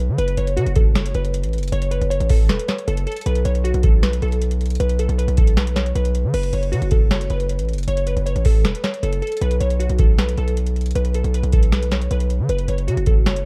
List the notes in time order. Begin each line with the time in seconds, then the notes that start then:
Already playing: B1
0.09 D3
0.18 F#1 B4, closed hi-hat
0.28 closed hi-hat
0.37 F#1 C#5, closed hi-hat
0.47 closed hi-hat
0.57 C#3 F#4, closed hi-hat
0.66 F#1, closed hi-hat
0.76 A4, kick, closed hi-hat
0.95 C#5, snare, closed hi-hat
1.06 closed hi-hat
1.14 F#1 B4, closed hi-hat
1.25 closed hi-hat
1.34 closed hi-hat
1.44 A1, closed hi-hat
1.53 closed hi-hat
1.58 F#1, closed hi-hat
1.63 closed hi-hat
1.68 closed hi-hat
1.72 F#1 C#5, closed hi-hat
1.82 closed hi-hat
1.91 B4, closed hi-hat
2.01 F#1, closed hi-hat
2.10 C#5, closed hi-hat
2.20 A1, closed hi-hat
2.29 A4, kick, open hi-hat
2.49 E1 B4, snare, closed hi-hat
2.59 closed hi-hat
2.68 C#5, snare, closed hi-hat
2.78 closed hi-hat
2.88 F#1 A4, closed hi-hat
2.97 closed hi-hat
3.07 A4, closed hi-hat
3.12 closed hi-hat
3.17 closed hi-hat
3.21 closed hi-hat
3.26 B1 B4, closed hi-hat
3.35 closed hi-hat
3.45 B1 C#5, closed hi-hat
3.55 closed hi-hat
3.64 F#4, closed hi-hat
3.74 B1, closed hi-hat
3.83 A4, kick, closed hi-hat
4.03 B4, snare, closed hi-hat
4.13 closed hi-hat
4.22 B1 A4, closed hi-hat
4.32 closed hi-hat
4.42 closed hi-hat
4.51 closed hi-hat
4.61 closed hi-hat
4.66 closed hi-hat
4.70 closed hi-hat
4.75 closed hi-hat
4.80 B1 B4, closed hi-hat
4.89 closed hi-hat
4.99 A4, closed hi-hat
5.09 B1, closed hi-hat
5.18 B4, closed hi-hat
5.28 B1, closed hi-hat
5.37 A4, kick, closed hi-hat, open hi-hat
5.47 closed hi-hat
5.57 B4, snare, closed hi-hat
5.67 closed hi-hat
5.76 C#5, snare, closed hi-hat
5.86 closed hi-hat
5.95 B1 B4, closed hi-hat
6.05 closed hi-hat
6.15 closed hi-hat
6.24 D3
6.34 F#1 B4, closed hi-hat, crash
6.43 closed hi-hat
6.53 F#1 C#5, closed hi-hat
6.63 closed hi-hat
6.72 C#3 F#4, closed hi-hat
6.82 F#1, closed hi-hat
6.91 A4, kick, closed hi-hat
7.11 C#5, snare, closed hi-hat
7.21 closed hi-hat
7.30 F#1 B4, closed hi-hat
7.40 closed hi-hat
7.49 closed hi-hat
7.59 A1, closed hi-hat
7.69 closed hi-hat
7.73 F#1, closed hi-hat
7.78 closed hi-hat
7.83 closed hi-hat
7.88 F#1 C#5, closed hi-hat
7.97 closed hi-hat
8.07 B4, closed hi-hat
8.16 F#1, closed hi-hat
8.26 C#5, closed hi-hat
8.36 A1, closed hi-hat
8.45 A4, kick, open hi-hat
8.64 E1 B4, snare, closed hi-hat
8.75 closed hi-hat
8.84 C#5, snare, closed hi-hat
8.94 closed hi-hat
9.03 F#1 A4, closed hi-hat
9.13 closed hi-hat
9.22 A4, closed hi-hat
9.27 closed hi-hat
9.32 closed hi-hat
9.37 closed hi-hat
9.41 B1 B4, closed hi-hat
9.51 closed hi-hat
9.60 B1 C#5, closed hi-hat
9.70 closed hi-hat
9.80 F#4, closed hi-hat
9.89 B1, closed hi-hat
9.98 A4, kick, closed hi-hat
10.18 B4, snare, closed hi-hat
10.29 closed hi-hat
10.37 B1 A4, closed hi-hat
10.48 closed hi-hat
10.57 closed hi-hat
10.67 closed hi-hat
10.76 closed hi-hat
10.81 closed hi-hat
10.86 closed hi-hat
10.91 closed hi-hat
10.95 B1 B4, closed hi-hat
11.05 closed hi-hat
11.14 A4, closed hi-hat
11.24 B1, closed hi-hat
11.34 B4, closed hi-hat
11.43 B1, closed hi-hat
11.52 A4, kick, closed hi-hat, open hi-hat
11.63 closed hi-hat
11.72 B4, snare, closed hi-hat
11.83 closed hi-hat
11.91 C#5, snare, closed hi-hat
12.02 closed hi-hat
12.11 B1 B4, closed hi-hat
12.20 closed hi-hat
12.30 closed hi-hat
12.40 D3
12.49 F#1 B4, closed hi-hat
12.59 closed hi-hat
12.68 F#1 C#5, closed hi-hat
12.78 closed hi-hat
12.88 C#3 F#4, closed hi-hat
12.97 F#1, closed hi-hat
13.06 A4, kick, closed hi-hat
13.26 C#5, snare, closed hi-hat
13.36 closed hi-hat